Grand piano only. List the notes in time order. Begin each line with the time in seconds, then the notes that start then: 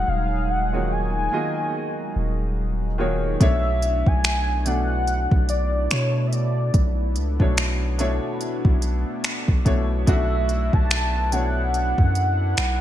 Already playing: C#5
0.72 D#3 A#3 F4 F#4 G#4 C#5
1.32 D#3 A#3 F4 F#4 G#4 D#5
2.98 D#3 A#3 F4 F#4 G#4 C#5
3.40 B2 A3 D4 E4 C#5
4.65 B2 A3 D4 E4 D5
7.39 B2 A3 D4 E4 C#5
7.98 B2 A3 D4 E4 C#5
9.65 B2 A3 D4 E4 C#5
10.06 B2 A3 D4 E4 F#4
11.32 B2 A3 D4 E4 C#5